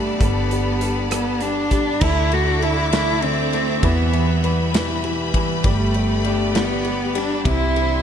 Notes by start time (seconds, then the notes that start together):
Already playing: G1 G3 A3 B3 D4 G4 A4 D5 A5 B5
0.19 G1 G3 B3 D4 A4, kick, closed hi-hat
0.23 G3 B3
0.51 G3, closed hi-hat
0.80 G3 B3 D4 A4, closed hi-hat
1.10 G3 B3 D4 A4, cross-stick, closed hi-hat
1.41 G3 D4, closed hi-hat
1.70 G3 B3 D4 A4, kick, closed hi-hat
2.01 D2 D3 A3 D4 E4 A4 D5 E5 D6, kick, crash
2.32 A3 F#4, ride
2.60 D3 A3 D4 E4, ride
2.91 D3 A3 D4 E4, snare, ride
3.22 D3 C4, ride
3.51 A3 D4 E4, ride
3.81 E2 B2 E3 G3 B3 E4 G4 B4 B5, kick, ride
4.13 E3, ride
4.41 E3 G3 B3 E4, ride
4.71 E2 B2 E3 G3 B3 E4, snare, ride
5.04 E3, ride
5.32 E3 G3 B3 E4, kick, ride
5.36 E3
5.63 G1 G2 D3 G3 B3 D4 G4 D5, kick, ride
5.67 A3
5.94 G3, ride
6.23 G3 B3 D4 G4, ride
6.53 G2 D3 G3 B3 D4 G4, snare, ride
6.85 G3, ride
7.14 G3 B3 D4 G4, ride
7.18 D4
7.44 C2 C3 E3 G3 C4 E4 C5 E5 C6, kick, ride
7.48 E4
7.76 G3, ride